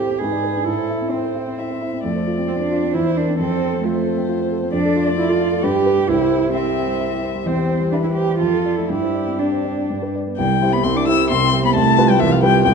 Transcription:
Already playing: A2 C4 E4 G4 A4 C5
0.10 C4
0.19 G#2 G#4 B4
0.32 D5
0.43 B4
0.55 D4
0.65 A2 E4 A4
0.78 C5
0.90 E4
1.01 C4
1.11 C4 E4 C5
1.24 C5
1.35 E4
1.47 C4
1.58 E4 E5
1.71 C5
1.81 E4
1.93 C4
2.03 F2 A3 D5
2.15 C5
2.27 F4
2.38 C4
2.48 C4 F4
2.60 D4 C5
2.71 F4
2.83 C4
2.94 E2 E4 C5
3.06 C5
3.17 D4 A#4
3.28 C4
3.39 F2 C4 A4
3.51 C5
3.63 A4
3.73 C4
3.83 A3 F4 C5
3.95 C5
4.06 A4
4.17 C4
4.29 F4
4.40 C5
4.52 A4
4.62 C4
4.73 F2 D4 D5
4.85 A4
4.96 F4
5.07 A3
5.17 E4 F4
5.29 F4 A4
5.40 F4
5.52 A3
5.63 G2 G4 B4
5.74 G4
5.86 B4
5.98 G3
6.08 C2 E4 C5
6.20 G4
6.31 C5
6.43 G3
6.54 C4 E4 E5
6.66 G4
6.77 C5
6.87 G3
7.00 E4
7.11 G4
7.22 C5
7.35 G3
7.45 E2 C4 C5
7.57 G4
7.69 C5
7.81 G3
7.92 D4 E4 B4
8.04 E4 G4
8.15 G4 C5
8.29 G3
8.39 F2 F4 A4
8.53 A4
8.65 D5
8.77 A3 E4
8.89 G2 E4 G4
9.02 C5
9.14 D5
9.27 C4
9.39 D4
9.52 C5
9.65 D5
9.78 C4
9.90 G2
10.02 B4
10.15 D5
10.27 B3
10.37 C2 C3 G3 G5
10.62 G3 E4 C5
10.72 B3 B5
10.83 C2 C3 C4 C6
10.96 D4 D6
11.06 G3 E4 C5 E6
11.30 C2 C3 C4 C6
11.53 G3 E4 C5
11.64 B3 B5
11.75 C2 C3 A3 A5
11.97 G3 F4 B4
12.09 G3 G5
12.19 C2 C3 E3 E5
12.31 F3 F5
12.42 G3 F4 B4 G5
12.65 C2 C3 G3 G5

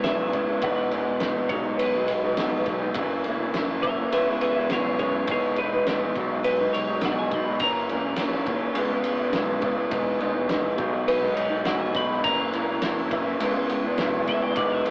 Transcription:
0.04 B1 C#3 G#3 B3 E4 E5, snare, ride
0.33 C#2 C#3 G#3 B3 E4, kick, ride
0.47 G#3 B3 E4
0.62 E1 E3 G#3 B3 D#4 F#5, kick, ride
0.91 E1 E3 G#3 B3 D#4, ride
1.06 G#3 B3 D#4
1.20 E1 E3 G#3 B3 D#4, snare, ride
1.35 G#3 B3 D#4
1.49 B1 B2 F#3 G#3 C#5, kick, ride
1.54 D#4
1.64 F#3 G#3 D#4
1.78 B1 B4, ride
1.94 F#3 G#3 D#4
2.08 B1, ride
2.23 F#3 G#3 D#4
2.37 B1 B2 F#3 G#3 D#4, snare, ride
2.66 B1 B2 F#3 G#3, kick, ride
2.70 D#4
2.82 F#3 G#3 D#4
2.94 F#1 F#2 C#3 E3 A#3, kick, ride
2.99 E4
3.24 E1 C#3 E3 A#3, ride
3.29 E4
3.40 E3 A#3 E4
3.54 F#1 F#2 C#3 E3 A#3 E4, snare, ride
3.71 E3 A#3 E4
3.82 C#3 E3 A#3 C#5 E5, kick, ride
3.86 E4
3.98 E3 A#3 E4
4.12 C#2 C#3 G#3 B3 E4 B4 E5, ride
4.27 G#3 B3 E4
4.41 C#2 B4 E5, ride
4.56 G#3 B3 E4
4.70 B1 C#3 G#3 B3 E4 G#4 C#5, snare, ride
4.99 F#2 C#3 G#3 B3 E4 G#4 C#5, kick, ride
5.15 G#3 B3 E4
5.27 E1 E3 G#3 B3 D#4 G#4, kick, ride
5.32 C#5
5.56 E1 E3 G#3 B3 D#4 B4, ride
5.72 G#3 B3 D#4
5.86 E1 E3 G#3 B3 D#4, snare, ride
6.01 G#3 B3 D#4
6.16 B1 B2 F#3 G#3 D#4, kick, ride
6.31 F#3 G#3 D#4
6.44 B1 B4, ride
6.60 F#3 G#3 D#4
6.73 B1 C#5, ride
6.88 F#3 G#3 D#4
7.01 B1 B2 F#3 G#3 D#4 F#5, snare, ride
7.19 G#5
7.31 B1 B2 F#3 G#3 D#4 B5, kick, ride
7.47 F#3 G#3 D#4
7.60 F#1 F#2 C#3 E3 A#3 C#4 A#5, kick, ride
7.89 E1 C#3 E3 A#3 C#4, ride
8.04 E3 A#3 C#4
8.16 D#2 F#2 C#3 E3 A#3 C#4, snare, ride
8.32 E3 A#3 C#4
8.46 C#3 E3 A#3 C#4, kick, ride
8.61 E3 A#3 C#4
8.74 C#2 C#3 G#3 B3 E4, ride
8.90 G#3 B3 E4
9.04 C#2, ride
9.19 G#3 B3 E4
9.32 B1 C#3 G#3 B3 E4, snare, ride
9.61 C#2 C#3 G#3 B3 E4, kick, ride
9.74 G#3 B3 E4
9.89 E1 E3 G#3 B3 D#4, kick, ride
10.19 E1 E3 G#3 B3 D#4, ride
10.33 G#3 B3 D#4
10.48 E1 E3 G#3 B3 D#4, snare, ride
10.62 G#3 B3 D#4
10.76 B1 B2 F#3 G#3 D#4, kick, ride
10.91 F#3 G#3 D#4
11.08 B1 B4, ride
11.21 F#3 G#3 D#4
11.35 B1 C#5, ride
11.50 F#3 G#3 D#4
11.64 B1 B2 F#3 G#3 D#4 F#5, snare, ride
11.80 G#5
11.93 B1 B2 F#3 G#3 D#4 B5, kick, ride
12.08 F#3 G#3 D#4
12.23 F#1 F#2 C#3 E3 A#3 E4 A#5, kick, ride
12.51 E1 C#3 E3 A#3 E4, ride
12.68 E3 A#3 E4
12.81 F#1 F#2 C#3 E3 A#3 E4, snare, ride
12.95 E3 A#3 E4
13.10 C#3 E3 A#3 E4, kick, ride
13.24 E3 A#3 E4
13.39 C#2 C#3 G#3 B3 E4, ride
13.54 G#3 B3 E4
13.70 C#2, ride
13.84 G#3 B3 E4
13.98 B1 C#3 G#3 B3 E4, snare, ride
14.27 C#2 C#3 G#3 B3 E4 E5, kick, ride
14.41 G#3 B3 E4 G5
14.56 E1 E3 G#3 B3 D#4 D5, kick, ride
14.72 E5
14.84 E1 E3 G#3 G5, ride

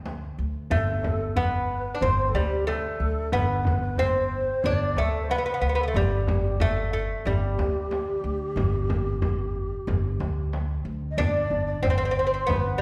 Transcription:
Already playing: D2
0.06 tombak tek, frame drum
0.22 tombak ka
0.38 D2
0.70 G1 A3 A4, tombak dum, frame drum
1.04 tombak dum, frame drum
1.20 tombak ka
1.36 B3 B4, tombak dum, frame drum
1.53 tombak ka
1.69 tombak ka
1.95 D4
2.01 G1 C4 C5, tombak dum, frame drum
2.28 A4
2.34 D2 G3 G4, tombak tek, frame drum
2.52 tombak ka
2.67 A3 A4, tombak tek, frame drum
2.84 tombak ka
3.00 D2
3.32 G1 B3 B4, tombak dum, frame drum
3.40 A4
3.47 B4
3.65 tombak dum, frame drum
3.81 B4, tombak ka
3.98 C4 C5, tombak dum, frame drum
4.16 tombak ka
4.32 tombak ka
4.63 G1 D4 D5, tombak dum, frame drum
4.96 D2 A3 A4, tombak tek, frame drum
5.13 tombak ka
5.23 C5
5.30 B3 B4, tombak tek, frame drum
5.38 B3
5.46 B3, tombak ka
5.54 B3
5.61 D2 B3
5.69 B3
5.75 B3 A4
5.83 B3
5.88 A3
5.94 G1 G3 G4, tombak dum, frame drum
6.27 tombak dum, frame drum
6.45 G4, tombak ka
6.60 A3 A4, frame drum, tombak dum
6.77 tombak ka
6.93 A3, tombak ka
7.25 G1 G3 G4, frame drum, tombak dum
7.58 D2, tombak tek, frame drum
7.76 tombak ka
7.91 tombak tek, frame drum
8.09 tombak ka
8.24 D2
8.56 G1, tombak dum, frame drum
8.73 tombak ka
8.89 tombak dum, frame drum
9.06 tombak ka
9.22 frame drum, tombak dum
9.39 tombak ka
9.55 tombak ka
9.71 tombak ka
9.87 G1, tombak dum, frame drum
10.20 D2, tombak tek, frame drum
10.53 tombak tek, frame drum
10.70 tombak ka
10.85 D2
11.02 tombak ka
11.11 D#5
11.17 G1 D4 D5, tombak dum, frame drum
11.50 G1, tombak dum
11.67 D5
11.82 G1 C4 C5, tombak dum, frame drum
11.90 C4
11.98 C4, tombak ka
12.05 C4
12.11 C4
12.17 C4, tombak ka
12.27 C4
12.34 C4
12.47 G1 B3 B4, frame drum, tombak dum
12.78 G3

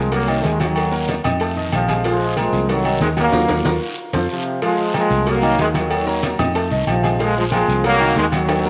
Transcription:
Already playing: C2 F3 G#3
0.12 F#3 A#3 F#4 F#5, cowbell, high conga, low agogo, long guiro
0.28 D#3 D#4 D#5, high conga, low agogo
0.44 D#2 D#3 G#3, cowbell, high conga, low timbale, short guiro
0.60 D#3 F#3 F#4 F#5, cowbell, high conga, low agogo, short guiro
0.76 cowbell, high conga, low agogo, long guiro
0.92 A#3 A#4 A#5, high conga
1.08 cowbell, high conga, low agogo, short guiro
1.24 F2 D#4 D#5 D#6, cowbell, low conga, low agogo, short guiro
1.40 A3 A4 A5, cowbell, high conga, low agogo, long guiro
1.56 D#3 D#4 D#5, high conga
1.72 A#1 C3 F3, cowbell, high conga, low agogo, short guiro
1.88 G#3 G#4 G#5, cowbell, high conga, low agogo, short guiro
2.04 F3 G#3 F4 F5, cowbell, high conga, low agogo, long guiro
2.21 high conga
2.37 F3 G#3 A#3 A#4 A#5, cowbell, high conga, low agogo, short guiro
2.53 C2, short guiro
2.69 D#3 F#3 F#4 F#5, cowbell, high conga, low agogo, long guiro
2.84 D#3 D#4 D#5, high conga, low agogo
3.01 D#2 D#3 G#3, cowbell, high conga, low timbale, short guiro
3.17 F#3 A#3 F#4 F#5, cowbell, high conga, low agogo, short guiro
3.32 D#2 F4 F#4 A#4, cowbell, high conga, high timbale, long guiro
3.48 D#2 F4 F#4 A#4, cowbell, high conga, high timbale, long guiro
3.65 D#2 F4 F#4 A#4, cowbell, high conga, high timbale, long guiro
4.13 F2 F4 A4 C5, cowbell, high conga, high timbale, long guiro
4.31 C3 F3
4.62 F3 G#3 F4 F5, cowbell, high conga, low agogo, long guiro
4.78 high conga
4.94 F3 G#3 A#3 A#4 A#5, cowbell, high conga, low agogo, short guiro
5.10 C2, short guiro
5.26 F#3 A#3 F#4 F#5, cowbell, high conga, low agogo, long guiro
5.42 D#3 D#4 D#5, high conga, low agogo
5.58 D#2 D#3 G#3, cowbell, high conga, low timbale, short guiro
5.74 D#3 F#3 F#4 F#5, cowbell, high conga, low agogo, short guiro
5.90 cowbell, high conga, low agogo, long guiro
6.07 A#3 A#4 A#5, high conga
6.23 cowbell, high conga, low agogo, short guiro
6.38 F2 D#4 D#5 D#6, cowbell, low conga, low agogo, short guiro
6.55 A3 A4 A5, cowbell, high conga, low agogo, long guiro
6.71 C2 D#3 D#4 D#5, high conga
6.87 A#1 C3 F3, cowbell, high conga, low agogo, short guiro
7.03 G#3 G#4 G#5, cowbell, high conga, low agogo, short guiro
7.19 F3 G#3 F4 F5, cowbell, high conga, low agogo, long guiro
7.36 F3 G#3, high conga
7.51 F3 G#3 A#3 A#4 A#5, cowbell, high conga, low agogo, short guiro
7.68 C2, short guiro
7.84 F#3 A#3 F#4 F#5, cowbell, high conga, low agogo, long guiro
8.00 D#3 D#4 D#5, high conga, low agogo
8.16 D#2 D#3 G#3, cowbell, high conga, low timbale, short guiro
8.32 D#3 F#3 F#4 F#5, cowbell, high conga, low agogo, short guiro
8.49 cowbell, high conga, high timbale, low agogo, long guiro
8.59 high timbale
8.65 A#3 A#4 A#5, high conga

